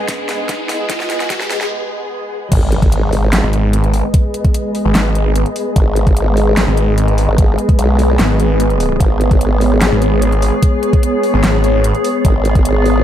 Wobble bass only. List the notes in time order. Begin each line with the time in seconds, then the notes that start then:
2.52 G#1
3.33 G#1
5.76 G#1
6.57 G#1
7.28 G#1
7.79 B1
9.00 G#1
9.82 G#1
12.25 G#1